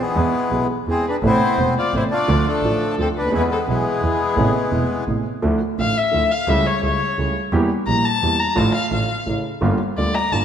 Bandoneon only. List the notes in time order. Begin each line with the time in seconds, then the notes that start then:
0.01 E3 G#3 B3
0.90 C4
1.09 D4
1.26 B3 C4 E4
1.79 F4
1.96 E4
2.11 A3 D4 F4
2.46 F3 A3 D4
3.01 C4
3.18 D4
3.34 G#3 B3 E4
3.52 C4
3.68 E3 G#3 B3